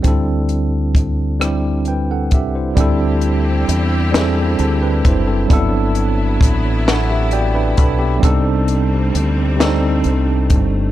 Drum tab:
HH |xxxxxx|xxxxxx|xxxxxx|xxxxxx|
SD |---r--|---o--|---o--|---o--|
BD |o-o--o|o----o|o-o--o|o----o|